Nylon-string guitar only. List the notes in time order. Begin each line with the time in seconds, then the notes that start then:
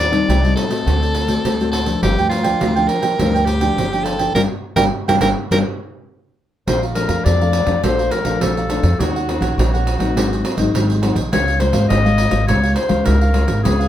Already playing: A2
0.11 G3 C4 D#4
0.28 A2
0.43 G3 C4 D#4
0.69 A3 C4 F#4
0.86 D3
1.28 A3 C4 F#4
1.45 A2
1.60 A3 C4 F#4
1.86 F3 A#3 D4
2.03 G2
2.44 F3 A#3 D4
2.62 D3
2.77 F3 A#3 D4
3.03 F3 A#3 D4
3.20 G2 F3 A#3 D4
3.61 F3 A#3 D4
3.78 D3
3.93 F3 A#3 D4
4.19 F3 A#3 D4
4.36 G3 A#3 D4
4.76 G3 A#3 D4
5.09 G3 A#3 D4
5.21 G3 A#3 D4
5.51 G3 A#3 D4
6.68 A#2
6.96 F3 A3 D4
7.26 F2
7.41 F3 A3 D4
7.66 F3 A3 D4
7.84 A#2 F3 A3 D4
8.25 F3 A3 D4
8.43 F2
8.70 F3 A3 D4
9.01 D#3 A#3 C#4 F#4
9.29 A#3 C#4 F#4
9.60 A#2
9.75 A#3 C#4 F#4
10.01 F#3 C4 D#4
10.17 G#2
10.59 F#3 C4 D#4
10.76 D#3
11.03 F#3 C4 D#4
11.32 C#3 G#3 A#3 F4
11.61 G#3 A#3 F4
11.90 G#2
12.05 G#3 A#3 F4
12.31 G#3 A#3 F4
12.48 C#3 G#3 A#3 F4
12.89 G#3 A#3 F4
13.06 G#2
13.34 G#3 A#3 F4
13.64 C#3 G#3 B3 F4